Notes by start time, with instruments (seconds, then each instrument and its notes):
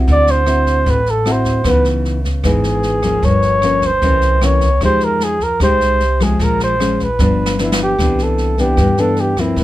Already playing: nylon-string guitar C4 E4 F#4
0.08 upright bass D2, nylon-string guitar D3, kick, snare
0.12 flugelhorn D5
0.27 flugelhorn C5, snare
0.46 nylon-string guitar C4 E4 F#4, cross-stick, snare
0.66 kick, snare
0.86 upright bass A1, nylon-string guitar A2, flugelhorn B4, kick, snare
1.06 snare
1.10 flugelhorn A4
1.25 nylon-string guitar C4 E4 F#4, cross-stick, snare
1.32 flugelhorn C5
1.45 kick, snare
1.64 upright bass C#2, nylon-string guitar C#3 E3 B3 D#4, kick, cross-stick, snare
1.70 flugelhorn B4
1.84 snare
2.05 snare
2.24 kick, snare
2.44 upright bass G#1, nylon-string guitar G#2 E3 B3 D#4, flugelhorn G#4, kick, cross-stick, snare
2.64 snare
2.83 snare
3.02 nylon-string guitar F3 A#3 C#4, kick, cross-stick, snare
3.22 upright bass G1, nylon-string guitar G2, flugelhorn C#5, kick, snare
3.42 snare
3.62 nylon-string guitar F3 A#3 C#4, cross-stick, snare
3.82 kick, snare
3.86 flugelhorn C5
4.02 upright bass C2, nylon-string guitar C3 E3 A#3 C#4, kick, snare
4.21 snare
4.41 nylon-string guitar E3 A#3 C#4, flugelhorn C#5, cross-stick, snare
4.61 kick, snare
4.81 upright bass F2, nylon-string guitar F3 G#3 D#4 G4, flugelhorn C5, kick, cross-stick, snare
5.00 flugelhorn A#4, snare
5.20 flugelhorn G#4, snare
5.40 flugelhorn A#4, kick, snare
5.60 upright bass C2, nylon-string guitar C3 G#3 D#4 G4, flugelhorn C5, kick, cross-stick, snare
5.81 snare
6.00 snare
6.20 nylon-string guitar F3 G#3 C#4, flugelhorn G#4, kick, cross-stick, snare
6.39 upright bass A#1, nylon-string guitar A#2, flugelhorn A#4, kick, snare
6.60 flugelhorn C5, snare
6.80 nylon-string guitar F3 G#3 C#4, cross-stick, snare
6.99 kick, snare
7.04 flugelhorn B4
7.19 upright bass G1, nylon-string guitar G2 F3 B3 D4, kick, snare
7.46 snare
7.59 nylon-string guitar F3 B3 D4, flugelhorn E4, snare
7.72 snare
7.83 flugelhorn G4
7.99 upright bass C2, nylon-string guitar C3 E3 B3 D4, kick, cross-stick, snare
8.18 snare
8.23 flugelhorn A4
8.38 snare
8.58 nylon-string guitar E3 B3 D4, flugelhorn G4, kick, snare
8.77 upright bass G2, nylon-string guitar G2, kick, cross-stick, snare
8.97 nylon-string guitar E3 B3 D4, flugelhorn A4, snare
9.16 snare
9.20 flugelhorn G4
9.37 nylon-string guitar F3 A#3 C4, flugelhorn E4, kick, cross-stick, snare
9.56 upright bass G1, nylon-string guitar G2, kick, snare